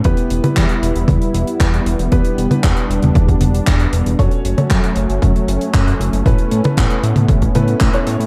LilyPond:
<<
  \new Staff \with { instrumentName = "Grand piano" } { \time 4/4 \key e \dorian \tempo 4 = 116 <b e' g' b'>8. <b e' g' b'>2.~ <b e' g' b'>16 | <b e' g' b'>8. <b e' g' b'>2.~ <b e' g' b'>16 | <cis' fis' a' cis''>8. <cis' fis' a' cis''>2.~ <cis' fis' a' cis''>16 | <cis' e' a' b'>8. <cis' e' a' b'>4.~ <cis' e' a' b'>16 <cis' e' a' b'>8 r16 <cis' e' a' cis''>8. | }
  \new Staff \with { instrumentName = "Analog synth pad" } { \time 4/4 \key e \dorian << { e'1 | d'1 | cis'1~ | cis'1 | } \\ { <g b>1~ | <g b>1 | <fis a>1 | b1 | } >> }
  \new Staff \with { instrumentName = "Analog synth bass" } { \clef bass \time 4/4 \key e \dorian e,16 r16 e,,16 r16 e,16 r16 e,,16 e,,16 e,16 r16 e,,16 r16 e,8 e,,16 e,,16 | e,16 r16 e,,16 r16 e,16 r16 e,,16 e,,16 e,8 e,,8 e,8 e,,16 e,,16 | fis,16 r16 fis,,16 r16 fis,16 r16 fis,,16 fis,,16 fis,16 r16 fis,,16 r16 fis,8 fis,,16 fis,,16 | a,,16 r16 a,16 r16 a,,16 r16 a,16 a,16 a,,8 a,8 a,,16 r16 a,16 a,16 | }
  \new DrumStaff \with { instrumentName = "Drums" } \drummode { \time 4/4 <hh bd>16 hh16 hh16 <hh tommh>16 <hc hh bd>16 hh16 hh16 hh16 <hh bd tommh>16 hh16 hh16 hh16 <hc hh bd>16 hh16 hh16 hh16 | <hh bd>16 hh16 hh16 <hh tommh>16 <hc hh bd>16 hh16 hh16 <hh tommh>16 <hh bd tommh>16 <hh bd>16 <hh tommh>16 hh16 <hc hh bd>16 hh16 hh16 hh16 | <hh bd>16 hh16 hh16 <hh tommh>16 <hc hh bd>16 hh16 hh16 hh16 <hh bd tommh>16 hh16 hh16 hh16 <hc hh bd>16 hh16 hh16 hh16 | <hh bd>16 hh16 hh16 <hh tommh>16 <hc hh bd>16 hh16 hh16 <hh tommh>16 <hh bd tommh>16 <hh bd>16 <hh tommh>16 hh16 <hc hh bd>16 hh16 hh16 hh16 | }
>>